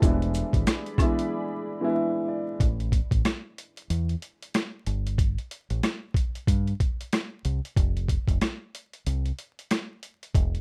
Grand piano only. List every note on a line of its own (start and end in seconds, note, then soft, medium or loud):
0.00 0.66 E3 medium
0.00 0.20 G3 medium
0.00 0.66 G#3 medium
0.00 0.67 B3 medium
0.04 0.67 D4 medium
0.04 0.67 E4 loud
0.98 1.53 E3 loud
0.98 1.54 G#3 medium
0.98 1.54 B3 medium
0.98 1.55 D4 medium
0.98 1.55 E4 loud
1.81 2.33 E3 medium
1.81 2.33 G#3 medium
1.81 2.33 B3 medium
1.81 2.34 D4 medium
1.81 2.34 E4 loud
1.95 2.25 E5 medium
2.28 2.58 D5 medium